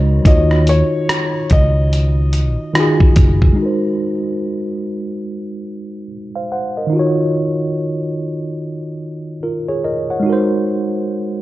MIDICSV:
0, 0, Header, 1, 5, 480
1, 0, Start_track
1, 0, Tempo, 833333
1, 145, Time_signature, 4, 2, 24, 8
1, 6577, End_track
2, 0, Start_track
2, 0, Title_t, "Felt piano"
2, 0, Program_c, 0, 0
2, 154, Note_on_c, 0, 75, 90
2, 397, Note_off_c, 0, 75, 0
2, 398, Note_on_c, 0, 73, 91
2, 849, Note_off_c, 0, 73, 0
2, 878, Note_on_c, 0, 75, 88
2, 1808, Note_off_c, 0, 75, 0
2, 6577, End_track
3, 0, Start_track
3, 0, Title_t, "Tine electric piano"
3, 0, Program_c, 1, 4
3, 0, Control_c, 1, 64, 127
3, 0, Note_on_c, 1, 56, 71
3, 0, Note_on_c, 1, 63, 64
3, 0, Note_on_c, 1, 66, 65
3, 0, Note_on_c, 1, 70, 58
3, 0, Note_on_c, 1, 75, 77
3, 135, Note_on_c, 1, 51, 76
3, 143, Note_off_c, 1, 63, 0
3, 143, Note_on_c, 1, 63, 70
3, 152, Control_c, 1, 64, 0
3, 152, Note_on_c, 1, 65, 68
3, 153, Note_off_c, 1, 70, 0
3, 154, Note_off_c, 1, 66, 0
3, 156, Note_off_c, 1, 56, 0
3, 157, Note_off_c, 1, 75, 0
3, 164, Note_on_c, 1, 66, 69
3, 171, Note_on_c, 1, 73, 78
3, 258, Control_c, 1, 64, 127
3, 752, Note_off_c, 1, 51, 0
3, 755, Note_off_c, 1, 63, 0
3, 760, Note_off_c, 1, 65, 0
3, 766, Note_off_c, 1, 66, 0
3, 770, Note_off_c, 1, 73, 0
3, 1575, Note_on_c, 1, 51, 80
3, 1583, Note_on_c, 1, 63, 76
3, 1592, Note_on_c, 1, 65, 73
3, 1601, Note_on_c, 1, 66, 75
3, 1612, Note_on_c, 1, 68, 88
3, 1886, Note_off_c, 1, 51, 0
3, 1890, Note_off_c, 1, 63, 0
3, 1894, Note_off_c, 1, 65, 0
3, 1899, Note_off_c, 1, 66, 0
3, 1904, Note_off_c, 1, 68, 0
3, 2032, Note_on_c, 1, 56, 68
3, 2051, Note_on_c, 1, 63, 68
3, 2069, Note_on_c, 1, 66, 67
3, 2072, Control_c, 1, 64, 0
3, 2088, Note_on_c, 1, 70, 64
3, 2106, Note_on_c, 1, 72, 78
3, 2182, Control_c, 1, 64, 127
3, 3493, Note_off_c, 1, 70, 0
3, 3503, Note_off_c, 1, 72, 0
3, 3661, Note_on_c, 1, 77, 56
3, 3664, Note_on_c, 1, 72, 50
3, 3745, Note_off_c, 1, 77, 0
3, 3747, Note_off_c, 1, 72, 0
3, 3755, Note_on_c, 1, 78, 65
3, 3757, Note_on_c, 1, 72, 54
3, 3890, Note_off_c, 1, 78, 0
3, 3891, Note_off_c, 1, 72, 0
3, 3901, Note_on_c, 1, 75, 56
3, 3904, Note_on_c, 1, 70, 48
3, 3945, Note_off_c, 1, 56, 0
3, 3955, Note_off_c, 1, 63, 0
3, 3957, Note_on_c, 1, 51, 78
3, 3964, Note_off_c, 1, 66, 0
3, 3973, Note_on_c, 1, 63, 67
3, 3992, Note_on_c, 1, 65, 65
3, 3993, Control_c, 1, 64, 0
3, 4012, Note_on_c, 1, 66, 68
3, 4029, Note_on_c, 1, 73, 80
3, 4083, Control_c, 1, 64, 127
3, 4125, Note_off_c, 1, 75, 0
3, 4127, Note_off_c, 1, 70, 0
3, 5406, Note_off_c, 1, 65, 0
3, 5416, Note_off_c, 1, 66, 0
3, 5424, Note_off_c, 1, 73, 0
3, 5432, Note_on_c, 1, 70, 57
3, 5436, Note_on_c, 1, 65, 45
3, 5569, Note_off_c, 1, 70, 0
3, 5571, Note_off_c, 1, 65, 0
3, 5578, Note_on_c, 1, 73, 61
3, 5580, Note_on_c, 1, 68, 51
3, 5664, Note_off_c, 1, 73, 0
3, 5665, Note_off_c, 1, 68, 0
3, 5670, Note_on_c, 1, 75, 62
3, 5672, Note_on_c, 1, 70, 54
3, 5808, Note_off_c, 1, 75, 0
3, 5809, Note_off_c, 1, 70, 0
3, 5820, Note_on_c, 1, 78, 54
3, 5823, Note_on_c, 1, 73, 45
3, 5868, Note_off_c, 1, 51, 0
3, 5873, Note_on_c, 1, 56, 71
3, 5876, Note_off_c, 1, 63, 0
3, 5890, Note_on_c, 1, 63, 72
3, 5911, Control_c, 1, 64, 0
3, 5911, Note_on_c, 1, 66, 69
3, 5929, Note_on_c, 1, 70, 65
3, 5947, Note_on_c, 1, 72, 82
3, 6030, Control_c, 1, 64, 127
3, 6044, Note_off_c, 1, 78, 0
3, 6046, Note_off_c, 1, 73, 0
3, 6577, Note_off_c, 1, 56, 0
3, 6577, Note_off_c, 1, 63, 0
3, 6577, Note_off_c, 1, 66, 0
3, 6577, Note_off_c, 1, 70, 0
3, 6577, Note_off_c, 1, 72, 0
3, 6577, End_track
4, 0, Start_track
4, 0, Title_t, "Fingered electric bass"
4, 0, Program_c, 2, 33
4, 0, Note_on_c, 2, 37, 89
4, 107, Note_off_c, 2, 37, 0
4, 145, Note_on_c, 2, 39, 100
4, 469, Note_off_c, 2, 39, 0
4, 870, Note_on_c, 2, 37, 77
4, 1472, Note_off_c, 2, 37, 0
4, 1824, Note_on_c, 2, 30, 84
4, 2025, Note_off_c, 2, 30, 0
4, 6577, End_track
5, 0, Start_track
5, 0, Title_t, "Drums"
5, 144, Note_on_c, 9, 36, 106
5, 147, Note_on_c, 9, 42, 68
5, 202, Note_off_c, 9, 36, 0
5, 205, Note_off_c, 9, 42, 0
5, 294, Note_on_c, 9, 37, 34
5, 351, Note_off_c, 9, 37, 0
5, 385, Note_on_c, 9, 42, 68
5, 443, Note_off_c, 9, 42, 0
5, 629, Note_on_c, 9, 37, 94
5, 631, Note_on_c, 9, 42, 74
5, 687, Note_off_c, 9, 37, 0
5, 688, Note_off_c, 9, 42, 0
5, 862, Note_on_c, 9, 42, 50
5, 869, Note_on_c, 9, 36, 80
5, 920, Note_off_c, 9, 42, 0
5, 926, Note_off_c, 9, 36, 0
5, 1110, Note_on_c, 9, 42, 55
5, 1168, Note_off_c, 9, 42, 0
5, 1341, Note_on_c, 9, 42, 60
5, 1399, Note_off_c, 9, 42, 0
5, 1586, Note_on_c, 9, 37, 101
5, 1586, Note_on_c, 9, 42, 67
5, 1643, Note_off_c, 9, 37, 0
5, 1643, Note_off_c, 9, 42, 0
5, 1730, Note_on_c, 9, 36, 92
5, 1788, Note_off_c, 9, 36, 0
5, 1819, Note_on_c, 9, 42, 62
5, 1823, Note_on_c, 9, 36, 95
5, 1877, Note_off_c, 9, 42, 0
5, 1880, Note_off_c, 9, 36, 0
5, 1969, Note_on_c, 9, 36, 80
5, 2027, Note_off_c, 9, 36, 0
5, 6577, End_track
0, 0, End_of_file